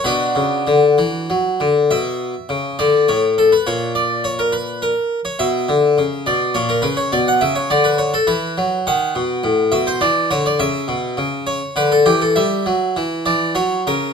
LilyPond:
<<
  \new Staff \with { instrumentName = "Harpsichord" } { \time 3/4 \key b \minor \tempo 4 = 103 <d' fis' b'>2 r4 | e''4. d''8 cis''8 a'16 b'16 | cis''8 d''8 cis''16 ais'16 b'8 ais'8. cis''16 | e''4. d''8 cis''16 ais'16 b'16 cis''16 |
d''16 fis''16 e''16 cis''16 d''16 b'16 cis''16 a'16 b'4 | fis''4. e''16 c''16 d''8 cis''16 d''16 | e''4. cis''8 b'16 a'16 g'16 a'16 | e''4. d''8 cis''8 ais'8 | }
  \new Staff \with { instrumentName = "Harpsichord" } { \clef bass \time 3/4 \key b \minor b,8 cis8 d8 e8 fis8 d8 | b,4 cis8 d8 a,4 | ais,2. | b,8 d8 cis8 b,8 ais,8 cis8 |
b,8 cis8 d4 e8 fis8 | dis8 b,8 a,8 b,8 e8 d8 | cis8 b,8 cis4 d8 e8 | g8 fis8 e8 e8 fis8 cis8 | }
>>